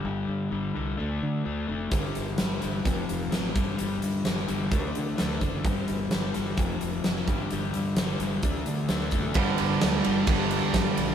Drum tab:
RD |----------------|----------------|----------------|----------------|
HH |----------------|x-x-x-x-x-x-x-x-|x-x-x-x-x-x-x-x-|x-x-x-x-x-x-x-x-|
SD |----------------|----o-------o---|----oo------oo--|----o-------oo--|
BD |----------------|o-------o-----o-|--------o-----o-|o-------o-----o-|

RD |----------------|x-x-x-x-x-x-x-x-|
HH |x-x-x-x-x-x-x-x-|----------------|
SD |----oo------oo--|----o-------o---|
BD |--------o-----o-|o-------o---o---|